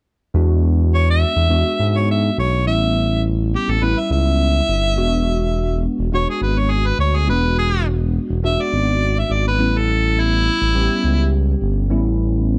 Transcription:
0.34 E2 G#3 B3 D4 F#4
0.94 C#5
1.10 E5
1.36 E2
1.49 E2 G#3 B3 D4 F#4
1.80 G#2
1.98 C#5
2.11 E5
2.38 B1 C#5
2.66 A1 G3 B3 C#4 E4 E5
3.55 G4
3.68 A1 A4
3.81 A1 G3 B3 C#4 E4 B4
4.00 E5
4.10 C#2 E5
4.68 G1
4.96 E1 G#3 B3 D4 F#4
5.99 E1
6.12 E1 G#3 B3 D4 F#4 C#5
6.30 G#4
6.41 G#1 B4
6.59 C#5
6.71 G#4
6.86 B4
6.99 D2 C#5
7.16 G#4
7.27 E1 G#3 B3 D4 F#4 B4
7.58 G#4
8.30 E1
8.43 E1 G#3 B3 D4 F#4 E5
8.61 D5
8.72 G#1
9.18 E5
9.30 G#1 D5
9.48 B4
9.58 A1 G3 B3 C#4 E4
9.78 A4
10.20 E4
10.62 A1
10.74 A1 G3 B3 C#4 G4
11.04 C#2
11.62 G1
11.90 A1 G3 B3 C#4 E4

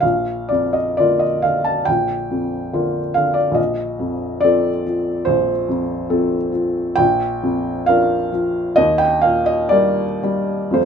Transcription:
0.00 A#1 F5
0.49 F2 D5
0.73 D#5
0.97 D3 A#3 F4 D5
1.19 D#5
1.42 D3 F5
1.65 A5
1.85 A#1 G5
2.31 F2
2.73 D3 A#3 F4
3.14 D3 F5
3.34 D5
3.51 A#1 D#5
3.99 F2
4.41 F3 C4 A4 D5
4.87 F3
5.25 A#1 C5
5.69 F2
6.10 F3 C4 A4
6.52 F3
6.96 A#1 G5
7.43 F2
7.86 F3 D4 A#4 F5
8.32 F3
8.76 D#2 D#5
8.98 G5
9.22 A#2 F5
9.46 D#5
9.69 G3 A#3 A#4 D5
10.23 G3
10.71 F2 F3 A3 C5
10.75 F4

